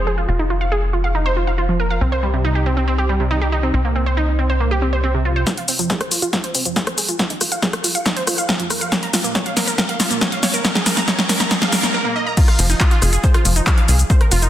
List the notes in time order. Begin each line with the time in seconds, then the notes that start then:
Already playing: F1
0.07 G#4
0.18 F4
0.29 F1 F4
0.39 D#4
0.50 F4
0.61 F5
0.72 G#4
0.93 F4
1.04 F5
1.15 D#4
1.26 C5
1.36 F4
1.47 F5
1.58 F4
1.69 F3
1.80 A#4
1.90 F5
2.01 C2 C4
2.12 C5
2.23 G3
2.34 C3
2.44 D#4
2.55 G4
2.66 C4
2.77 C4
2.88 C4
2.98 G4
3.09 G3
3.20 C3
3.31 D#4
3.41 G4
3.52 D#4
3.63 C4
3.74 C2 C4
3.85 A#3
3.96 C4
4.06 C5
4.17 D#4
4.39 C4
4.50 C5
4.60 A#3
4.71 G4
4.82 C4
4.93 C5
5.04 C4
5.14 C3
5.25 F4
5.36 C5
5.47 F4, kick, snare, closed hi-hat, shaker
5.57 F5, closed hi-hat
5.68 C4, open hi-hat, shaker
5.79 F3, closed hi-hat, shaker
5.90 G#4, kick, snare, closed hi-hat, shaker
6.01 C5, cross-stick, closed hi-hat
6.11 F4, open hi-hat, shaker
6.22 F4, closed hi-hat, shaker
6.33 F4, kick, snare, closed hi-hat, shaker
6.44 C5, closed hi-hat
6.55 C4, open hi-hat, shaker
6.65 F3, closed hi-hat, shaker
6.76 G#4, kick, snare, closed hi-hat, shaker
6.87 C5, cross-stick, closed hi-hat
6.98 G#4, open hi-hat, shaker
7.09 F4, closed hi-hat, shaker
7.19 F4, kick, snare, closed hi-hat, shaker
7.30 D#4, closed hi-hat
7.41 F4, cross-stick, open hi-hat, shaker
7.52 F5, closed hi-hat, shaker
7.62 G#4, kick, snare, closed hi-hat, shaker
7.73 cross-stick, closed hi-hat
7.84 F4, open hi-hat, shaker
7.95 F5, closed hi-hat, shaker
8.06 D#4, kick, snare, closed hi-hat, shaker
8.16 C5, closed hi-hat
8.27 F4, cross-stick, open hi-hat, shaker
8.38 F5, closed hi-hat, shaker
8.49 F4, kick, snare, closed hi-hat, shaker
8.60 F3, closed hi-hat
8.70 A#4, cross-stick, open hi-hat, shaker
8.81 F5, closed hi-hat, shaker
8.92 A#4, kick, snare, closed hi-hat, shaker
9.03 A#5, closed hi-hat
9.13 F4, snare, open hi-hat, shaker
9.24 A#3, closed hi-hat, shaker
9.35 C#5, kick, snare, closed hi-hat, shaker
9.46 F5, closed hi-hat
9.57 A#4, snare, open hi-hat, shaker
9.67 A#4, closed hi-hat, shaker
9.78 A#4, kick, snare, closed hi-hat, shaker
9.89 F5, closed hi-hat
10.00 F4, snare, open hi-hat, shaker
10.11 A#3, closed hi-hat, shaker
10.21 C#5, kick, snare, closed hi-hat, shaker
10.32 F5, closed hi-hat
10.43 C#5, snare, open hi-hat, shaker
10.54 A#4, closed hi-hat, shaker
10.64 A#4, kick, snare, closed hi-hat, shaker
10.75 G#4, snare, closed hi-hat
10.86 A#4, snare, open hi-hat, shaker
10.97 A#5, snare, closed hi-hat, shaker
11.08 C#5, kick, snare, closed hi-hat, shaker
11.19 snare, closed hi-hat
11.29 A#4, snare, open hi-hat, shaker
11.40 A#5, snare, closed hi-hat, shaker
11.51 G#4, kick, snare, closed hi-hat, shaker
11.62 F5, snare, closed hi-hat
11.72 A#4, snare, open hi-hat, shaker
11.83 A#5, snare, closed hi-hat, shaker
11.94 A#4
12.05 A#3
12.16 D#5
12.27 A#5
12.37 F4, kick, closed hi-hat, crash, shaker
12.48 F5, cross-stick, closed hi-hat
12.59 F1 F3, open hi-hat, shaker
12.70 D#4, closed hi-hat, shaker
12.80 F4, kick, clap, closed hi-hat, shaker
12.91 F4, closed hi-hat
13.02 F1 G#4, cross-stick, open hi-hat, shaker
13.13 G#4, closed hi-hat, shaker
13.24 C5, kick, closed hi-hat, shaker
13.34 F4, cross-stick, closed hi-hat
13.45 F1 F3, open hi-hat, shaker
13.56 D#4, closed hi-hat, shaker
13.67 F3, kick, clap, closed hi-hat, shaker
13.78 F5, closed hi-hat
13.88 C2 G#4, open hi-hat, shaker
13.99 closed hi-hat, shaker
14.10 C5, kick, closed hi-hat, shaker
14.21 A#4, cross-stick, closed hi-hat
14.31 F1 F4, open hi-hat, shaker
14.42 D#4, closed hi-hat, shaker